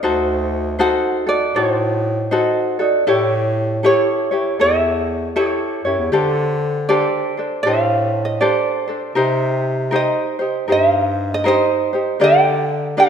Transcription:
0.03 bass clarinet D2, ukulele D#4 F#4 A4 C5
0.79 ukulele D#4 F#4 A4 C5 F#5
1.26 ukulele D#4 F#4 A4 D5
1.55 bass clarinet A2, ukulele D#4 F#4 A4 C5
2.31 ukulele D#4 F#4 A4 C5, vibraphone D#5
2.79 ukulele D#4 F#4 A4, vibraphone D5
3.07 bass clarinet A2, ukulele E4 G4 A4 C#5, vibraphone G4
3.83 ukulele E4 G4 A4 C#5
4.31 ukulele E4 G4 C#5
4.60 bass clarinet E2, ukulele E4 G4 A4 C#5 E5
5.36 ukulele E4 G4 A4 C#5
5.84 bass clarinet F#2, ukulele E4 G4 C#5
5.98 bass clarinet E2
6.12 bass clarinet D3, ukulele D4 G4 A4 C5
6.89 ukulele D4 G4 A4 C5 D5
7.37 ukulele D4 A4 C5
7.63 bass clarinet A2, ukulele D4 G4 A4 F5
7.67 ukulele C5
8.25 ukulele D#5
8.40 ukulele D4 G4 A4 C5 D5
8.88 ukulele D4 A4 C5
9.15 bass clarinet C3, ukulele D#4 G4 A#4 C5
9.91 ukulele D#4 G4 A#4 C5
9.96 ukulele D#5
10.39 ukulele D#4 G4 C5
10.68 bass clarinet G2, ukulele D#4 G4 A#4 C5
10.72 ukulele E5
10.89 ukulele F5
11.34 ukulele D#5
11.44 ukulele D#4 G4 A#4 C5 D#5
11.93 ukulele D#4 G4 C5
12.20 bass clarinet D3, ukulele D4 G4 A#4 D5
12.24 ukulele G5
12.97 ukulele D4 G4 A#4 D5 F5

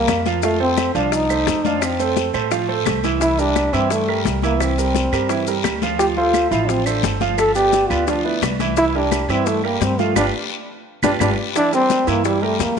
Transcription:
Already playing: grand piano G3 G4 A#4, trombone A#3
0.07 upright bass F2, high bongo, low bongo, high conga, short guiro, claves, maracas
0.26 grand piano F3 F4 F5, high bongo, high conga, short guiro, maracas
0.42 grand piano F3 F4 F5, trombone A3, high bongo, high conga, long guiro, maracas
0.60 grand piano A3 A4 C5, trombone C4, high bongo, high conga
0.77 high bongo, high conga, short guiro, claves, maracas
0.95 upright bass C2, grand piano F3 F4 F5, trombone D4, high bongo, high conga, short guiro, maracas
1.12 trombone D#4, high bongo, high conga, long guiro, maracas
1.30 grand piano A3 A4 C5, high bongo, high conga, claves, maracas
1.47 upright bass F2, high bongo, low bongo, high conga, short guiro, maracas
1.65 grand piano F3 F4 F5, trombone D4, high conga, short guiro, maracas
1.82 trombone C4, high bongo, high conga, long guiro, claves, maracas
1.99 grand piano A3 A4 C5, high conga, maracas
2.16 high bongo, high conga, short guiro, maracas
2.34 upright bass A2, grand piano A3 A4 C5, high bongo, high conga, short guiro, claves, maracas
2.51 grand piano F3 F4 F5, high bongo, high conga, long guiro, maracas
2.68 grand piano A3 A4 C5, high bongo, high conga
2.86 upright bass C2, high bongo, low bongo, high conga, short guiro, claves, maracas
3.04 grand piano E3 E4 E5, high bongo, high conga, short guiro, maracas
3.21 grand piano E3 E4 E5, trombone E4, high bongo, high conga, long guiro, maracas
3.38 grand piano G3 G4 A#4, trombone D4, high bongo, high conga, maracas
3.56 high bongo, high conga, short guiro, claves, maracas
3.73 upright bass G2, grand piano E3 E4 E5, trombone C4, high bongo, high conga, short guiro, maracas
3.90 trombone A3, high bongo, high conga, long guiro, maracas
4.08 grand piano G3 G4 A#4, high bongo, high conga, claves
4.25 upright bass C2, high bongo, low bongo, high conga, short guiro, maracas
4.42 grand piano E3 E4 E5, trombone A#3, high conga, short guiro, maracas
4.60 trombone C4, high bongo, high conga, long guiro, claves, maracas
4.78 grand piano G3 G4 A#4, high conga, maracas
4.95 high bongo, high conga, short guiro, maracas
5.12 upright bass G2, grand piano G3 G4 A#4, high bongo, high conga, short guiro, claves, maracas
5.29 grand piano E3 E4 E5, high bongo, high conga, long guiro, maracas
5.47 grand piano G3 G4 A#4, high bongo, high conga, maracas
5.64 upright bass D2, high bongo, low bongo, high conga, short guiro, claves, maracas
5.82 grand piano F3 F4 F5, high bongo, high conga, short guiro, maracas
5.99 grand piano F3 F4 F5, trombone G4, high bongo, high conga, long guiro, maracas
6.16 grand piano A3 A4 C5, trombone F4, high bongo, high conga
6.34 high bongo, high conga, short guiro, claves, maracas
6.50 upright bass A1, grand piano F3 F4 F5, trombone E4, high bongo, high conga, short guiro, maracas
6.68 trombone C4, high bongo, high conga, long guiro, maracas
6.86 grand piano A3 A4 C5, trombone D4, high bongo, high conga, claves, maracas
7.03 upright bass G1, high bongo, low bongo, high conga, short guiro, maracas
7.21 grand piano F3 F4 F5, high conga, short guiro, maracas
7.38 trombone A4, high bongo, high conga, long guiro, claves, maracas
7.55 grand piano B3 B4 D5, trombone G4, high conga, maracas
7.73 high bongo, high conga, short guiro, maracas
7.89 upright bass D2, grand piano B3 B4 D5, trombone F4, high bongo, high conga, short guiro, claves, maracas
8.07 grand piano F3 F4 F5, trombone D4, high bongo, high conga, long guiro, maracas
8.25 grand piano B3 B4 D5, trombone E4, high bongo, high conga
8.42 upright bass C2, high bongo, low bongo, high conga, short guiro, claves, maracas
8.60 grand piano E3 E4 E5, high bongo, high conga, short guiro, maracas
8.77 grand piano E3 E4 E5, trombone E4, high bongo, long guiro, maracas
8.94 grand piano G3 G4 A#4, trombone D4, high bongo, high conga
9.12 high bongo, high conga, short guiro, claves, maracas
9.29 upright bass G2, grand piano E3 E4 E5, trombone C4, high bongo, high conga, short guiro, maracas
9.46 trombone A3, high bongo, high conga, long guiro, maracas
9.64 grand piano G3 G4 A#4, trombone A#3, high bongo, high conga, claves
9.80 upright bass G2, trombone C4, high bongo, low bongo, high conga, short guiro, maracas
9.99 grand piano F3 F4 F5, trombone A3, high conga, short guiro, maracas
10.15 upright bass G1, trombone D4, grand piano F4 G4 B4, low bongo, high conga, long guiro, claves, maracas
11.03 upright bass G1, trombone D4, grand piano F4 G4 B4, low bongo, high conga, long guiro, claves, maracas
11.20 upright bass G1, trombone D4, grand piano F4 G4 B4, low bongo, high conga, long guiro, claves, maracas
11.55 grand piano E3 E4 E5, trombone D4, high bongo, high conga, long guiro, maracas
11.72 grand piano G3 G4 A#4, trombone C4, high bongo, high conga, maracas
11.90 high bongo, high conga, short guiro, maracas
12.07 upright bass G2, grand piano E3 E4 E5, trombone A#3, high bongo, high conga, short guiro, maracas
12.25 trombone G3, high bongo, high conga, long guiro, maracas
12.42 grand piano G3 G4 A#4, trombone A3, high bongo, high conga
12.59 upright bass F2, trombone A#3, high bongo, low bongo, high conga, short guiro, maracas

